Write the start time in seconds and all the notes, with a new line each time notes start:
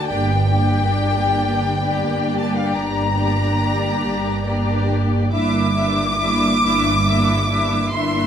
0.08 G1 G2 A#3 D4 G4 D5 G5
0.52 A#3 D4 G4 D5
1.41 G1 G2
1.84 A#3 D4 G4 D5
2.39 A5
2.49 G5
2.57 F5
2.67 G5
2.73 G1 G2 A#5
3.16 A#3 D4 G4 D5
4.02 G1 G2
4.45 A#3 D4 G4 D5
5.32 G1 G2 A#3 D4 E4 E5 D6
5.75 A#3 D4 E4 E5
6.18 A#3 D4 E4 E5
6.62 G1 G2 A#3 D4 E4 E5
7.06 A#3 D4 E4 E5
7.49 A#3 D4 E4 E5
7.92 G1 G2 A#3 D4 E4 E5 C6